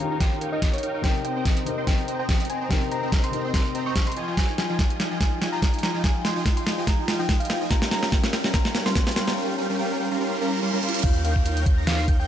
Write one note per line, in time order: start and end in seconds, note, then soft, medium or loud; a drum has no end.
0.00 1.06 D#3 medium
0.00 1.06 C#4 medium
0.00 1.06 F4 medium
0.00 0.02 G4 loud
0.00 1.03 G4 medium
0.00 0.14 A#5 medium
0.11 0.18 D#4 medium
0.11 0.18 A#4 medium
0.11 0.18 C#5 medium
0.11 0.18 F5 medium
0.11 0.18 A#5 medium
0.20 0.39 D#4 medium
0.20 0.39 A#4 medium
0.20 0.39 C#5 medium
0.20 0.39 F5 medium
0.20 0.45 G5 medium
0.20 0.39 C6 medium
0.20 kick medium
0.20 snare medium
0.20 closed hi-hat medium
0.41 0.50 D#4 medium
0.41 0.50 A#4 medium
0.41 0.50 C#5 medium
0.41 0.50 F5 medium
0.41 0.50 G5 loud
0.41 closed hi-hat medium
0.52 0.60 D#4 medium
0.52 0.60 A#4 medium
0.52 0.60 C#5 medium
0.52 0.68 D#5 medium
0.52 0.60 F5 medium
0.52 0.60 G5 loud
0.62 0.81 C#5 medium
0.62 kick medium
0.62 snare medium
0.62 closed hi-hat medium
0.73 0.98 C#5 medium
0.73 closed hi-hat soft
0.78 closed hi-hat medium
0.83 0.92 D#4 loud
0.83 0.92 A#4 medium
0.83 0.92 C#5 medium
0.83 0.92 F5 medium
0.83 0.92 G5 loud
0.83 closed hi-hat medium
0.94 1.02 D#4 medium
0.94 1.02 A#4 medium
0.94 1.02 C#5 medium
0.94 1.02 F5 medium
0.94 1.02 G5 medium
1.02 1.63 C3 medium
1.02 1.64 C4 medium
1.02 1.22 C4 medium
1.02 1.64 D#4 medium
1.02 1.65 A#4 loud
1.02 1.22 D#5 medium
1.02 1.21 G5 loud
1.02 1.22 A#5 medium
1.02 kick medium
1.02 snare medium
1.02 closed hi-hat medium
1.25 1.33 C4 medium
1.25 1.33 C5 medium
1.25 1.33 D#5 medium
1.25 1.33 G5 medium
1.25 1.49 G5 medium
1.25 1.33 A#5 medium
1.25 closed hi-hat medium
1.36 1.44 C4 medium
1.36 1.44 C5 medium
1.36 1.44 D#5 medium
1.36 1.44 G5 medium
1.36 1.44 A#5 medium
1.45 1.64 C4 loud
1.45 1.64 C5 medium
1.45 1.64 D#5 medium
1.45 1.64 G5 medium
1.45 1.64 A#5 loud
1.45 kick loud
1.45 snare medium
1.45 closed hi-hat medium
1.57 closed hi-hat medium
1.65 2.67 C3 medium
1.65 2.68 C4 medium
1.65 1.75 C4 medium
1.65 2.69 D#4 medium
1.65 2.69 A#4 loud
1.65 1.75 C5 medium
1.65 1.75 D#5 medium
1.65 1.75 G5 medium
1.65 1.75 A#5 medium
1.65 closed hi-hat medium
1.78 1.85 C4 medium
1.78 1.85 C5 medium
1.78 1.85 D#5 medium
1.78 1.85 G5 medium
1.78 1.85 C6 medium
1.87 2.06 C4 medium
1.87 2.06 C5 medium
1.87 2.12 G5 medium
1.87 kick medium
1.87 snare medium
1.87 closed hi-hat medium
2.08 2.17 C4 loud
2.08 2.17 C5 medium
2.08 2.17 D#5 medium
2.08 2.17 G5 medium
2.08 2.17 A#5 loud
2.08 closed hi-hat medium
2.19 2.27 C4 medium
2.19 2.27 C5 medium
2.19 2.27 D#5 medium
2.19 2.27 G5 medium
2.19 2.44 G5 medium
2.19 2.27 A#5 loud
2.29 kick loud
2.29 snare medium
2.29 closed hi-hat medium
2.40 closed hi-hat soft
2.45 closed hi-hat medium
2.50 2.58 C4 loud
2.50 2.58 C5 medium
2.50 2.58 D#5 medium
2.50 2.58 G5 medium
2.50 2.67 G#5 medium
2.50 2.58 A#5 loud
2.50 closed hi-hat medium
2.61 2.69 C4 medium
2.61 2.69 C5 medium
2.61 2.69 D#5 medium
2.61 2.69 G5 medium
2.61 2.69 A#5 medium
2.69 3.30 C3 medium
2.69 3.31 C4 medium
2.69 2.89 C4 medium
2.69 3.31 D#4 medium
2.69 2.87 G5 medium
2.69 kick medium
2.69 snare medium
2.69 closed hi-hat medium
2.73 3.32 A#4 loud
2.91 3.00 C4 medium
2.91 3.00 C5 medium
2.91 3.00 D#5 medium
2.91 3.00 G5 medium
2.91 3.00 A#5 loud
2.91 3.16 A#5 medium
2.91 closed hi-hat medium
3.03 3.11 C4 medium
3.03 3.11 C5 medium
3.03 3.11 D#5 medium
3.03 3.11 G5 medium
3.03 3.11 A#5 loud
3.12 3.31 C4 loud
3.12 3.31 C5 medium
3.12 kick loud
3.12 snare medium
3.12 closed hi-hat medium
3.24 3.48 C6 medium
3.24 closed hi-hat medium
3.31 4.14 C3 medium
3.31 4.15 C4 medium
3.31 3.42 C4 medium
3.31 4.16 D#4 medium
3.31 4.16 A#4 loud
3.31 3.42 C5 medium
3.31 3.42 D#5 medium
3.31 3.42 G5 medium
3.31 3.42 A#5 medium
3.31 closed hi-hat medium
3.44 3.52 C4 medium
3.44 3.52 C5 medium
3.44 3.52 D#5 medium
3.44 3.52 G5 medium
3.44 3.52 C6 medium
3.54 3.73 C5 medium
3.54 3.73 A#5 medium
3.54 3.79 C6 medium
3.54 kick loud
3.54 snare medium
3.54 closed hi-hat medium
3.75 3.83 C4 loud
3.75 3.83 C5 medium
3.75 3.83 D#5 medium
3.75 3.83 G5 medium
3.75 3.83 A#5 loud
3.75 closed hi-hat medium
3.86 3.93 C4 medium
3.86 3.93 C5 medium
3.86 3.93 D#5 medium
3.86 3.93 G5 medium
3.86 3.93 A#5 loud
3.86 4.02 C#6 medium
3.96 kick medium
3.96 snare medium
3.96 closed hi-hat medium
4.07 4.31 C6 medium
4.07 closed hi-hat soft
4.12 closed hi-hat medium
4.17 4.25 F3 medium
4.17 4.25 F4 medium
4.17 4.25 D#5 medium
4.17 4.25 G5 medium
4.17 4.25 G#5 loud
4.17 closed hi-hat medium
4.28 4.36 F3 medium
4.28 4.36 F4 medium
4.28 4.36 D#5 medium
4.28 4.36 G5 medium
4.28 4.36 G#5 medium
4.37 4.79 G#4 medium
4.37 4.54 G#5 loud
4.37 kick medium
4.37 snare medium
4.37 closed hi-hat medium
4.37 riser medium
4.48 4.69 D#4 medium
4.58 4.67 F3 medium
4.58 4.67 F4 medium
4.58 5.20 F4 medium
4.58 4.67 D#5 medium
4.58 4.67 G5 medium
4.58 4.67 G#5 medium
4.58 4.83 G#5 medium
4.58 snare medium
4.58 closed hi-hat medium
4.70 4.78 F3 medium
4.70 5.11 D#4 medium
4.70 4.78 F4 medium
4.70 4.78 D#5 medium
4.70 4.78 G5 medium
4.70 4.78 G#5 loud
4.79 4.96 G#4 medium
4.79 kick loud
4.79 snare medium
4.79 closed hi-hat medium
4.90 5.06 G4 medium
4.90 closed hi-hat medium
5.00 5.08 F3 medium
5.00 5.08 F4 medium
5.00 5.41 G#4 medium
5.00 5.08 D#5 medium
5.00 5.08 G5 medium
5.00 5.08 G#5 medium
5.00 snare medium
5.00 closed hi-hat medium
5.11 5.18 F3 medium
5.11 5.32 D#4 medium
5.11 5.18 F4 medium
5.11 5.18 D#5 medium
5.11 5.18 G5 medium
5.11 5.18 G#5 medium
5.21 5.82 F4 loud
5.21 5.45 G#5 medium
5.21 kick loud
5.21 snare medium
5.21 closed hi-hat medium
5.32 5.73 D#4 medium
5.41 5.50 F3 loud
5.41 5.50 F4 medium
5.41 5.59 G#4 medium
5.41 5.50 D#5 medium
5.41 5.50 G5 medium
5.41 5.50 G#5 loud
5.41 snare medium
5.41 closed hi-hat medium
5.52 5.60 F3 medium
5.52 5.60 F4 medium
5.52 5.68 G4 medium
5.52 5.60 D#5 medium
5.52 5.60 G5 medium
5.52 5.60 G#5 loud
5.52 5.77 A#5 medium
5.62 5.81 F3 medium
5.62 5.81 F4 medium
5.62 5.81 D#5 medium
5.62 5.81 G5 medium
5.62 5.81 G#5 loud
5.62 kick loud
5.62 snare medium
5.62 closed hi-hat medium
5.73 5.94 D#4 medium
5.73 closed hi-hat soft
5.79 closed hi-hat medium
5.83 5.92 F3 medium
5.83 6.45 F4 medium
5.83 5.92 F4 medium
5.83 5.92 D#5 medium
5.83 5.92 G5 medium
5.83 5.92 G#5 loud
5.83 6.00 A#5 medium
5.83 snare medium
5.83 closed hi-hat medium
5.94 6.02 F3 medium
5.94 6.36 D#4 medium
5.94 6.02 F4 medium
5.94 6.02 D#5 medium
5.94 6.02 G5 medium
5.94 6.02 G#5 medium
6.04 6.22 F3 medium
6.04 6.22 F4 medium
6.04 6.21 G#4 medium
6.04 6.22 D#5 medium
6.04 6.22 G5 medium
6.04 6.21 G#5 medium
6.04 6.22 G#5 medium
6.04 kick medium
6.04 snare medium
6.04 closed hi-hat medium
6.15 6.31 G4 medium
6.24 6.33 F3 medium
6.24 6.33 F4 medium
6.24 6.66 G#4 medium
6.24 6.33 D#5 medium
6.24 6.33 G5 medium
6.24 6.33 G#5 medium
6.24 6.49 C6 medium
6.24 snare medium
6.24 closed hi-hat medium
6.36 6.44 F3 medium
6.36 6.57 D#4 medium
6.36 6.44 F4 medium
6.36 6.44 D#5 medium
6.36 6.44 G5 medium
6.36 6.44 G#5 medium
6.45 6.64 F3 loud
6.45 6.64 F4 loud
6.45 7.08 F4 loud
6.45 6.64 D#5 medium
6.45 6.64 G#5 loud
6.45 kick loud
6.45 snare medium
6.45 closed hi-hat medium
6.57 6.98 D#4 medium
6.57 6.81 C6 medium
6.57 closed hi-hat medium
6.66 6.75 F3 medium
6.66 6.75 F4 medium
6.66 6.84 G#4 medium
6.66 6.75 D#5 medium
6.66 6.75 G5 medium
6.66 6.75 G#5 medium
6.66 snare medium
6.66 closed hi-hat medium
6.78 6.85 F3 medium
6.78 6.85 F4 medium
6.78 6.93 G4 medium
6.78 6.85 D#5 medium
6.78 6.85 G5 medium
6.78 6.85 G#5 medium
6.87 7.06 F3 medium
6.87 7.06 F4 medium
6.87 7.29 G#4 medium
6.87 7.06 D#5 medium
6.87 7.12 A#5 medium
6.87 kick medium
6.87 snare medium
6.87 closed hi-hat medium
6.98 7.19 D#4 medium
7.08 7.17 F3 loud
7.08 7.81 F4 loud
7.08 7.17 F4 medium
7.08 7.17 D#5 medium
7.08 7.17 G5 medium
7.08 7.17 G#5 loud
7.08 snare medium
7.08 closed hi-hat medium
7.19 7.27 F3 medium
7.19 7.61 D#4 medium
7.19 7.27 F4 medium
7.19 7.27 D#5 medium
7.19 7.35 G5 medium
7.19 7.27 G5 medium
7.19 7.27 G#5 loud
7.29 7.47 F3 medium
7.29 7.47 F4 medium
7.29 7.46 G#4 medium
7.29 7.47 G5 medium
7.29 7.47 G#5 loud
7.29 kick loud
7.29 snare loud
7.29 closed hi-hat medium
7.40 7.56 G4 medium
7.40 7.64 F5 medium
7.40 closed hi-hat soft
7.45 closed hi-hat medium
7.50 7.58 F3 loud
7.50 7.58 F4 medium
7.50 7.77 G#4 medium
7.50 7.58 D#5 medium
7.50 7.58 G5 medium
7.50 7.58 G#5 loud
7.50 snare medium
7.50 closed hi-hat medium
7.61 7.69 F3 medium
7.61 10.32 D#4 medium
7.61 7.69 F4 medium
7.61 7.69 D#5 medium
7.61 7.69 G5 medium
7.61 7.69 G#5 medium
7.71 7.89 G3 medium
7.71 7.89 C#4 medium
7.71 8.33 G4 loud
7.71 7.89 A#4 medium
7.71 7.89 F5 medium
7.71 7.89 G5 medium
7.71 7.87 A#5 medium
7.71 kick medium
7.71 snare medium
7.71 closed hi-hat medium
7.82 8.23 F4 medium
7.82 snare medium
7.91 8.00 G3 medium
7.91 8.00 C#4 medium
7.91 8.00 A#4 medium
7.91 8.12 C#5 medium
7.91 8.00 F5 medium
7.91 8.00 G5 medium
7.91 8.16 A#5 medium
7.91 snare medium
7.91 closed hi-hat medium
8.03 8.11 G3 medium
8.03 8.11 C#4 medium
8.03 8.65 A#4 medium
8.03 8.11 A#4 medium
8.03 8.11 F5 medium
8.03 8.11 G5 loud
8.03 snare medium
8.12 8.31 G3 loud
8.12 8.31 C#4 medium
8.12 8.54 C#5 medium
8.12 8.31 F5 medium
8.12 8.31 G5 loud
8.12 kick loud
8.12 snare medium
8.12 closed hi-hat medium
8.23 8.44 F4 medium
8.23 snare medium
8.23 closed hi-hat medium
8.33 8.42 G3 medium
8.33 8.42 C#4 medium
8.33 8.95 G4 loud
8.33 8.42 A#4 medium
8.33 8.42 F5 medium
8.33 8.42 G5 medium
8.33 snare loud
8.33 closed hi-hat medium
8.44 8.52 G3 medium
8.44 8.52 C#4 medium
8.44 8.86 F4 medium
8.44 8.52 A#4 medium
8.44 8.52 F5 medium
8.44 8.52 A#5 medium
8.44 snare medium
8.54 8.72 G3 medium
8.54 8.72 A#4 medium
8.54 8.74 C#5 medium
8.54 8.79 A#5 medium
8.54 8.72 C6 medium
8.54 kick medium
8.54 snare loud
8.54 closed hi-hat medium
8.65 9.27 A#4 medium
8.65 snare medium
8.75 8.83 G3 loud
8.75 8.83 C#4 medium
8.75 8.83 A#4 medium
8.75 9.16 C#5 medium
8.75 8.83 F5 medium
8.75 8.83 G5 loud
8.75 snare loud
8.75 closed hi-hat medium
8.86 8.93 G3 medium
8.86 8.93 C#4 medium
8.86 9.07 F4 medium
8.86 8.93 A#4 medium
8.86 8.93 F5 medium
8.86 8.93 G5 loud
8.86 9.10 C6 loud
8.86 snare medium
8.95 9.14 G3 medium
8.95 9.14 C#4 medium
8.95 11.31 G4 loud
8.95 9.14 F5 medium
8.95 9.14 G5 loud
8.95 kick loud
8.95 snare loud
8.95 closed hi-hat medium
9.07 11.59 F4 medium
9.07 snare medium
9.07 closed hi-hat medium
9.11 closed hi-hat medium
9.16 9.25 G3 medium
9.16 9.25 C#4 medium
9.16 9.25 A#4 medium
9.16 11.07 C#5 medium
9.16 9.25 F5 medium
9.16 9.25 G5 loud
9.16 9.33 C6 medium
9.16 snare loud
9.16 closed hi-hat medium
9.28 9.36 G3 medium
9.28 9.36 C#4 medium
9.28 11.40 A#4 medium
9.28 9.36 A#4 medium
9.28 9.36 F5 medium
9.28 9.36 G5 medium
9.28 snare medium
9.37 9.56 G3 medium
9.37 9.56 C#4 medium
9.37 9.56 A#4 medium
9.37 9.56 F5 medium
9.37 9.56 G5 medium
9.58 9.67 G3 medium
9.58 9.67 C#4 medium
9.58 9.67 A#4 medium
9.58 9.67 F5 medium
9.58 9.67 G5 medium
9.69 9.78 G3 medium
9.69 9.78 C#4 medium
9.69 9.78 A#4 medium
9.69 9.78 F5 medium
9.69 9.78 G5 medium
9.79 9.97 G3 loud
9.79 9.97 C#4 medium
9.79 9.97 A#4 medium
9.79 9.97 F5 loud
9.79 9.97 G5 loud
10.00 10.08 G3 medium
10.00 10.08 C#4 medium
10.00 10.08 A#4 medium
10.00 10.08 F5 medium
10.00 10.08 G5 medium
10.11 10.18 G3 medium
10.11 10.18 C#4 medium
10.11 10.18 A#4 medium
10.11 10.18 F5 medium
10.11 10.18 A#5 medium
10.20 10.39 G3 medium
10.20 10.39 C#4 medium
10.20 10.39 A#4 medium
10.20 10.39 F5 medium
10.20 10.39 C6 loud
10.20 reverse cymbal medium
10.41 10.60 G3 loud
10.41 10.60 C#4 medium
10.41 10.60 A#4 medium
10.41 10.60 F5 medium
10.41 10.60 A#5 loud
10.62 10.71 G3 loud
10.62 10.71 C#4 medium
10.62 10.71 A#4 medium
10.62 10.71 F5 medium
10.62 10.71 C6 loud
10.73 10.81 G3 loud
10.73 10.81 C#4 medium
10.73 10.81 A#4 medium
10.73 10.81 F5 medium
10.73 10.81 A#5 loud
10.83 11.02 G3 medium
10.83 11.02 C#4 medium
10.83 11.02 A#4 medium
10.83 11.02 F5 medium
10.83 11.02 C6 loud
10.83 closed hi-hat medium
10.89 closed hi-hat medium
10.94 closed hi-hat medium
10.99 closed hi-hat medium
11.03 12.27 D#2 medium
11.03 11.20 F5 loud
11.03 11.22 G6 medium
11.03 kick loud
11.03 closed hi-hat medium
11.03 crash loud
11.03 downlifter medium
11.25 11.33 D#4 medium
11.25 11.33 A#4 medium
11.25 11.33 C#5 medium
11.25 11.49 F5 medium
11.25 11.33 F5 medium
11.25 11.33 G5 loud
11.25 11.33 G6 loud
11.25 closed hi-hat medium
11.36 11.44 G6 medium
11.36 kick medium
11.45 11.64 D#4 loud
11.45 11.64 A#4 medium
11.45 11.64 C#5 loud
11.45 11.64 F5 medium
11.45 11.64 G5 loud
11.45 11.64 G6 loud
11.45 closed hi-hat medium
11.57 closed hi-hat medium
11.66 11.75 F5 medium
11.66 11.75 G6 medium
11.66 kick loud
11.66 closed hi-hat medium
11.78 11.85 D#4 medium
11.78 11.85 A#4 medium
11.78 11.85 C#5 medium
11.78 11.85 F5 medium
11.78 11.85 A#5 medium
11.78 11.85 A#6 medium
11.87 12.06 D#4 medium
11.87 12.06 A#4 medium
11.87 12.06 C#5 medium
11.87 12.12 F5 medium
11.87 12.06 F5 medium
11.87 12.06 C6 medium
11.87 12.06 C7 medium
11.87 snare loud
11.87 closed hi-hat medium
12.08 12.17 A#4 medium
12.08 12.17 C#5 medium
12.08 12.17 G6 loud
12.08 kick loud
12.08 closed hi-hat medium
12.19 12.27 D#4 medium
12.19 12.27 A#4 medium
12.19 12.27 C#5 medium
12.19 12.27 F5 medium
12.19 12.27 G5 loud
12.19 12.27 G5 medium
12.19 12.27 G6 loud